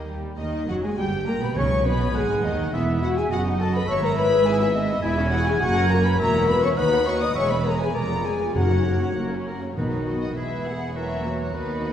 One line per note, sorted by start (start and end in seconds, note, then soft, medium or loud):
0.00 0.18 D#2 soft
0.00 0.19 G4 soft
0.00 0.18 A#4 soft
0.10 0.39 G3 soft
0.39 0.66 D#2 medium
0.39 0.67 D#3 medium
0.39 0.66 D#4 medium
0.39 0.48 D#4 medium
0.39 0.66 D#5 medium
0.68 0.83 F#1 medium
0.68 0.83 F#2 medium
0.68 0.83 F#3 medium
0.68 0.83 F#4 medium
0.68 0.74 F#4 medium
0.68 0.74 F#5 medium
0.82 0.98 G#2 medium
0.82 0.98 G#3 medium
0.82 0.89 G#4 medium
0.82 0.98 G#4 medium
0.82 0.97 G#5 medium
0.82 0.98 G#5 medium
0.98 1.27 G1 medium
0.98 1.27 G2 medium
0.98 1.06 G3 medium
0.98 1.26 G4 medium
0.98 1.27 G4 medium
0.98 1.04 G5 medium
0.98 1.58 G5 medium
0.98 1.28 G5 medium
1.27 1.42 A#1 medium
1.27 1.42 A#2 medium
1.27 1.33 A#3 medium
1.27 1.42 A#4 medium
1.27 1.33 A#5 medium
1.27 1.42 A#5 medium
1.41 1.56 B2 medium
1.41 1.47 B3 medium
1.41 1.57 B4 medium
1.41 1.56 B5 medium
1.41 1.57 B5 medium
1.56 1.86 C#2 medium
1.56 2.40 B2 medium
1.56 1.85 C#3 medium
1.56 1.65 C#4 medium
1.56 1.85 C#5 medium
1.56 1.86 C#5 medium
1.56 2.14 G#5 medium
1.56 1.88 C#6 medium
1.56 1.85 C#6 medium
1.85 2.15 B1 medium
1.85 2.15 B2 medium
1.85 2.14 B3 medium
1.85 2.15 B4 medium
1.85 2.14 B5 medium
1.85 2.15 B5 medium
2.15 2.43 G#1 medium
2.15 2.43 G#2 medium
2.15 2.44 G#3 medium
2.15 2.43 G#4 medium
2.15 2.45 G#4 medium
2.15 2.72 F#5 medium
2.15 2.45 G#5 medium
2.15 2.44 G#5 medium
2.44 2.73 D#2 medium
2.44 2.74 D#3 medium
2.44 2.73 D#4 medium
2.44 2.58 D#4 medium
2.44 2.75 D#5 medium
2.44 2.74 D#5 medium
2.73 3.27 E1 medium
2.73 3.27 E2 medium
2.73 2.87 G#3 medium
2.73 2.87 B3 medium
2.73 3.02 E4 medium
2.73 3.30 E5 medium
2.73 3.01 E5 medium
2.73 2.82 E5 medium
2.73 3.27 E5 medium
2.88 3.02 B3 medium
3.02 3.16 E4 medium
3.02 3.17 F#4 medium
3.02 3.18 F#5 medium
3.02 3.09 F#5 medium
3.17 3.31 G#4 medium
3.17 3.32 G#4 medium
3.17 3.33 G#5 medium
3.17 3.23 G#5 medium
3.31 3.87 F#1 medium
3.31 3.87 F#2 medium
3.31 3.44 B3 medium
3.31 3.45 F#4 medium
3.31 3.89 D#5 medium
3.31 3.88 D#5 medium
3.31 3.61 F#5 medium
3.31 3.40 F#5 medium
3.45 3.60 D#4 medium
3.60 3.74 F#4 medium
3.60 3.67 A4 loud
3.60 3.75 A5 medium
3.60 3.74 A5 medium
3.73 3.89 A4 medium
3.73 3.82 B4 medium
3.73 3.87 B5 medium
3.73 3.89 B5 medium
3.88 5.01 G#1 medium
3.88 5.01 G#2 medium
3.88 4.02 G#3 medium
3.88 4.03 C#5 loud
3.88 5.02 E5 medium
3.88 5.03 E5 medium
3.88 4.01 C#6 medium
3.88 4.04 C#6 medium
4.02 4.17 B3 medium
4.02 4.18 A#4 loud
4.02 4.15 A#5 medium
4.02 4.18 A#5 medium
4.16 4.32 E4 medium
4.16 4.46 B4 loud
4.16 4.22 B5 medium
4.16 4.46 B5 loud
4.32 4.46 G#4 medium
4.45 4.60 E4 medium
4.45 4.60 G#4 loud
4.45 4.51 G#5 medium
4.45 4.61 G#5 loud
4.59 4.75 B3 medium
4.59 4.75 E4 medium
4.59 4.72 E5 medium
4.59 4.74 E5 medium
4.73 4.89 G#3 medium
4.73 4.88 D#4 medium
4.73 5.02 D#5 medium
4.73 5.03 D#5 medium
4.90 5.03 B3 medium
5.02 5.54 E1 medium
5.02 5.54 E2 medium
5.02 5.17 E4 loud
5.02 5.17 E4 medium
5.02 5.17 G#4 medium
5.02 5.30 E5 medium
5.02 5.32 E5 medium
5.02 5.17 E5 medium
5.02 6.17 G#5 loud
5.18 5.32 C#4 medium
5.18 5.32 E4 medium
5.18 5.32 G#5 medium
5.31 5.46 E4 medium
5.31 5.46 F#4 loud
5.31 5.47 G#4 medium
5.31 5.46 E5 medium
5.31 5.45 F#5 medium
5.31 5.46 F#5 medium
5.46 5.61 C#4 medium
5.46 5.61 E4 medium
5.46 5.62 G#4 loud
5.46 5.52 G#5 medium
5.46 5.61 G#5 medium
5.60 6.12 F#1 medium
5.60 6.12 F#2 medium
5.60 5.75 A#3 medium
5.60 5.90 F#4 loud
5.60 5.75 F#4 medium
5.60 5.89 F#5 medium
5.60 5.90 F#5 loud
5.60 5.75 C#6 medium
5.76 5.90 C#4 medium
5.76 5.90 A#4 medium
5.76 5.91 A#5 medium
5.89 6.05 A#3 medium
5.89 6.05 F#4 medium
5.89 6.04 A#4 medium
5.89 5.95 A#5 medium
5.89 6.04 A#5 medium
5.89 6.05 C#6 medium
6.04 6.19 C#4 medium
6.04 6.19 A#4 medium
6.04 6.20 B4 loud
6.04 6.20 A#5 medium
6.04 6.21 B5 loud
6.04 6.19 B5 medium
6.19 6.70 E1 medium
6.19 6.70 E2 medium
6.19 6.33 A#3 medium
6.19 6.33 F#4 medium
6.19 6.48 A#4 loud
6.19 6.79 E5 medium
6.19 6.33 E5 medium
6.19 6.50 A#5 loud
6.19 6.48 A#5 loud
6.34 6.48 C#4 medium
6.34 6.48 E4 medium
6.34 6.49 F#5 medium
6.48 6.63 A#3 medium
6.48 6.63 F#4 medium
6.48 6.64 B4 loud
6.48 6.62 E5 medium
6.48 6.64 B5 medium
6.48 6.62 B5 medium
6.63 6.77 C#4 medium
6.63 6.77 E4 medium
6.63 6.78 C#5 loud
6.63 6.77 F#5 medium
6.63 6.68 C#6 medium
6.63 6.77 C#6 medium
6.77 7.29 D#2 medium
6.77 6.91 D#4 medium
6.77 6.91 F#4 medium
6.77 7.06 B4 loud
6.77 6.91 D#5 medium
6.77 7.35 F#5 medium
6.77 6.84 B5 medium
6.77 7.06 B5 loud
6.92 7.06 B3 medium
6.92 7.06 D#4 medium
6.92 7.06 F#5 medium
7.06 7.20 D#4 medium
7.06 7.21 F#4 medium
7.06 7.21 C#5 loud
7.06 7.21 D#5 medium
7.06 7.12 C#6 medium
7.06 7.21 C#6 medium
7.21 7.36 B3 medium
7.21 7.36 D#4 medium
7.21 7.36 D#5 loud
7.21 7.36 F#5 medium
7.21 7.35 D#6 medium
7.21 7.34 D#6 medium
7.34 7.88 E1 medium
7.34 7.88 E2 medium
7.34 7.49 G#3 medium
7.34 7.50 G#4 medium
7.34 7.50 C#5 loud
7.34 7.73 E5 medium
7.34 7.49 G#5 medium
7.34 7.40 C#6 medium
7.34 7.50 C#6 loud
7.49 7.65 B3 medium
7.49 7.65 B4 medium
7.49 7.65 E5 medium
7.49 7.66 B5 medium
7.49 7.65 B5 medium
7.64 7.80 G#3 medium
7.64 7.80 G#4 medium
7.64 7.72 A#4 medium
7.64 7.80 G#5 medium
7.64 7.79 A#5 medium
7.64 7.82 A#5 medium
7.80 7.95 B3 medium
7.80 7.88 G#4 medium
7.80 7.95 B4 medium
7.80 7.95 E5 medium
7.80 7.95 G#5 medium
7.80 7.97 G#5 medium
7.94 8.48 F1 medium
7.94 8.48 F2 medium
7.94 8.09 G#3 medium
7.94 8.09 G#4 medium
7.94 8.09 A#4 medium
7.94 8.09 B4 medium
7.94 8.51 D5 medium
7.94 8.25 A#5 medium
7.94 8.26 A#5 medium
8.10 8.25 B3 medium
8.10 8.25 F4 medium
8.10 8.25 D5 medium
8.24 8.41 G#3 medium
8.24 8.55 G#4 medium
8.24 8.41 G#4 medium
8.24 8.41 B4 medium
8.24 8.55 G#5 medium
8.41 8.56 B3 soft
8.41 8.56 F4 soft
8.41 8.56 D5 soft
8.54 9.09 F#1 medium
8.54 9.43 F#2 medium
8.54 9.09 F#2 medium
8.54 8.70 A#3 medium
8.54 9.16 F#4 medium
8.54 8.70 A#4 medium
8.54 9.45 C#5 medium
8.54 9.15 F#5 medium
8.54 9.16 F#5 medium
8.54 8.70 F#5 medium
8.71 8.86 C#4 soft
8.71 8.86 F#4 soft
8.71 8.86 C#5 soft
8.86 9.01 A#3 soft
8.86 9.01 A#4 soft
8.86 9.01 F#5 medium
9.01 9.16 C#4 soft
9.01 9.17 F#4 soft
9.01 9.17 C#5 medium
9.17 9.70 F#1 medium
9.17 9.70 F#2 medium
9.17 9.31 A#3 soft
9.17 9.31 A#4 soft
9.17 9.31 F#5 soft
9.31 9.47 C#4 soft
9.31 9.47 F#4 soft
9.31 9.47 C#5 soft
9.47 9.62 A#3 soft
9.47 9.62 A#4 soft
9.47 9.62 F#5 soft
9.62 9.77 C#4 soft
9.62 9.77 F#4 soft
9.62 9.77 C#5 soft
9.77 10.33 B1 soft
9.77 10.33 B2 soft
9.77 10.33 B2 medium
9.77 10.39 D#3 soft
9.77 10.05 F#3 soft
9.77 10.32 B3 soft
9.77 10.32 D#4 soft
9.77 10.05 D#4 soft
9.77 10.33 F#4 soft
9.77 9.83 B4 medium
9.77 10.05 B4 soft
9.77 10.33 B5 soft
9.91 9.99 C#5 medium
10.07 10.37 B3 soft
10.07 10.37 F#4 soft
10.07 10.37 D#5 soft
10.21 10.36 D#5 medium
10.36 11.54 E1 soft
10.36 11.54 E2 soft
10.36 10.95 E3 soft
10.36 10.64 G#3 soft
10.36 10.96 G#3 soft
10.36 10.95 B3 soft
10.36 10.64 E4 soft
10.36 10.98 G#4 soft
10.36 10.65 B4 soft
10.36 10.65 E5 medium
10.36 10.95 B5 soft
10.65 10.95 B3 soft
10.65 10.95 G#4 soft
10.65 10.96 G#4 soft
10.65 10.96 E5 soft
10.65 10.95 F#5 medium
10.95 11.23 E3 soft
10.95 11.56 E3 soft
10.95 11.53 F#3 soft
10.95 11.54 A#3 soft
10.95 11.23 C#4 soft
10.95 11.23 E4 soft
10.95 11.54 F#4 soft
10.95 11.23 A#4 soft
10.95 11.39 E5 medium
10.95 11.55 A#5 soft
11.25 11.54 F#3 soft
11.25 11.54 A#3 soft
11.25 11.54 F#4 soft
11.25 11.54 C#5 soft
11.40 11.54 C#5 medium
11.53 11.93 D#2 medium
11.53 11.81 D#3 soft
11.53 11.93 D#3 soft
11.53 11.93 F#3 medium
11.53 11.81 B3 soft
11.53 11.93 B3 medium
11.53 11.81 D#4 medium
11.53 11.93 F#4 medium
11.53 11.81 B4 medium
11.53 11.93 B4 medium
11.53 11.93 B5 medium
11.83 11.93 F#3 soft
11.83 11.93 D#4 soft
11.83 11.93 F#4 soft
11.83 11.93 D#5 soft